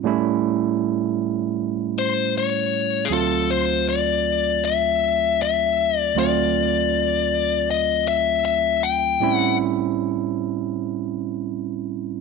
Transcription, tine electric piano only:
X:1
M:4/4
L:1/8
Q:1/4=79
K:D
V:1 name="Tine electric piano"
[A,,G,A,CE]8 | [D,,F,A,=C^E]8 | [D,,F,A,=C^E]8 | [A,,G,^B,CE]8 |]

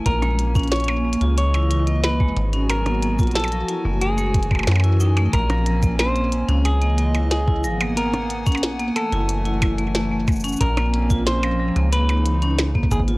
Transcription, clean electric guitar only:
X:1
M:4/4
L:1/8
Q:1/4=91
K:Bbphr
V:1 name="Clean electric guitar"
B2 d2 d2 c2 | B2 =A2 _A3 z | B2 =c2 A2 A2 | B3 =A4 z |
B2 =c2 _c3 A |]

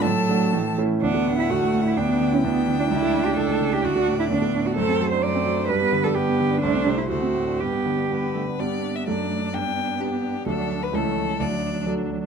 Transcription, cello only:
X:1
M:2/4
L:1/16
Q:1/4=128
K:D
V:1 name="Cello"
F,4 E,2 z2 | D3 E F3 E | D3 C B,3 D | E3 G A3 G |
F3 E D3 F | [K:G] A3 c d4 | B3 A G4 | D3 E F4 |
G6 z2 | B,4 A,4 | B,8 | F,4 E,4 |
F,8 |]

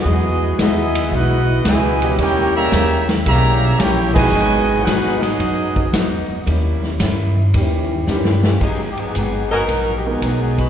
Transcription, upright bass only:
X:1
M:4/4
L:1/8
Q:"Swing" 1/4=112
K:G#m
V:1 name="Upright bass" clef=bass
E,,2 D,,2 B,,,2 C,,2 | D,,2 D,,2 B,,,2 A,,,2 | G,,,2 G,,2 F,,2 E,, z | D,,2 =G,,2 D,,2 G,,2 |
G,,2 G,,,2 A,,,2 B,,,2 |]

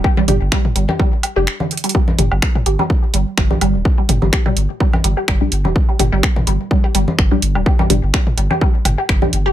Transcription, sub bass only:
X:1
M:4/4
L:1/16
Q:"Swing 16ths" 1/4=126
K:Gm
V:1 name="Sub bass" clef=bass
z2 G,,, G,,, z2 G,,, z4 F,,, z4 | z2 G,,, G,,, z2 G,,, z3 G,,, z G,,, B,,, G,,, D,,, | z2 G,,, G,,, z2 G,,, z3 G,,, z G,,, B,,, G,,, D,,, | z2 G,,, G,,, z2 G,,, z3 G,,, z G,,, B,,, G,,, D,,, |
z2 G,,, G,,, z2 G,,, z3 G,,, z G,,, B,,, G,,, D,,, |]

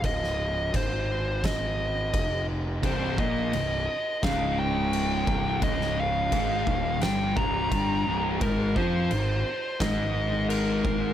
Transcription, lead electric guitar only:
X:1
M:4/4
L:1/8
Q:1/4=86
K:Cm
V:1 name="Lead electric guitar"
e2 c2 e3 z | c e3 f g3 | e f3 g b3 | B c3 e2 B2 |]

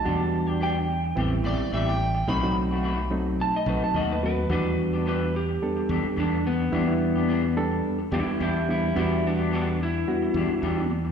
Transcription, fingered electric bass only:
X:1
M:4/4
L:1/16
Q:"Swing 16ths" 1/4=108
K:Em
V:1 name="Fingered electric bass" clef=bass
E,,8 A,,,2 A,,, z A,,,4 | B,,,8 z2 B,,, z ^D,,4 | E,,8 z2 E,, z E,,4 | E,,8 z2 E,, z E,,4 |
E,,8 z2 E,, z E,,4 |]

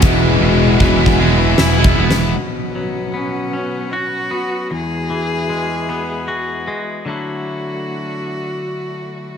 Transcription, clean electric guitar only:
X:1
M:3/4
L:1/8
Q:1/4=76
K:Dlyd
V:1 name="Clean electric guitar" clef=bass
E,, B,, F, G, E B, | B,, F, B, C F B, | E,, E, G, B, F G, | [D,F,A,DE]6 |]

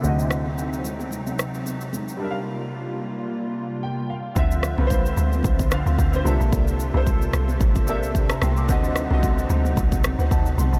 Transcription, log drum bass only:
X:1
M:4/4
L:1/16
Q:"Swing 16ths" 1/4=111
K:Dm
V:1 name="Log drum bass" clef=bass
z16 | z16 | D,,3 C,,3 D,,2 C,,3 D,, D,,2 C,, B,,, | C,,3 C,,3 C,,2 A,,,3 C,,3 C,,2 |
D,,3 C,,3 D,,2 C,,3 D,, D,,2 C,, A,,, |]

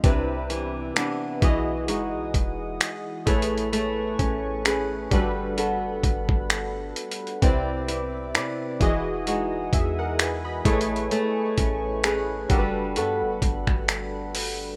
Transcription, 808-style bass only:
X:1
M:4/4
L:1/16
Q:"Swing 16ths" 1/4=65
K:Glyd
V:1 name="808-style bass" clef=bass
=C,,4 z2 B,,,2 F,,, B,,, E,,,2 z2 A,,,2- | A,,,2 A,,,4 G,,,3 F,,, G,,, G,,,3 z2 | =C,,4 =C,2 E,,,4 E,,4 A,,,2 | z2 A,,,4 F,,,2 G,, F,,, G,,, G,,,4- G,,, |]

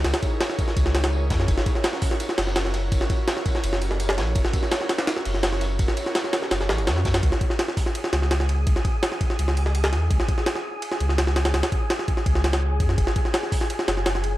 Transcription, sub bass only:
X:1
M:4/4
L:1/16
Q:1/4=167
K:C#dor
V:1 name="Sub bass" clef=bass
C,, z6 z C,,6 F,,2 | F,,, z8 z F,,,6 | F,,, z6 z F,,,6 A,,,2 | F,,, z8 z F,,,6 |
F,,, z6 z F,,,2 A,,, F,,, F,,4 | C,, z8 z C,,6 | C,, z6 z C,,6 E,,2 | C,, z8 z C,,6 |
C,, z6 z C,,6 F,,2 | F,,, z8 z F,,,6 |]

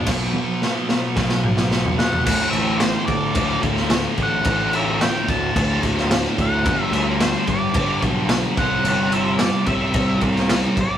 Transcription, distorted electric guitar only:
X:1
M:4/4
L:1/8
Q:1/4=109
K:Bm
V:1 name="Distorted electric guitar" clef=bass
[B,,F,B,]2 [B,,F,B,] [B,,F,B,] [B,,F,B,]2 [B,,F,B,] [B,,F,B,] | [K:Dmix] [D,,A,,D,]4 [D,,A,,D,]4 | [D,,A,,D,]4 [D,,A,,D,]4 | [G,,D,G,]4 [G,,D,G,]3 [C,G,C]- |
[C,G,C]3 [C,G,C]4 z |]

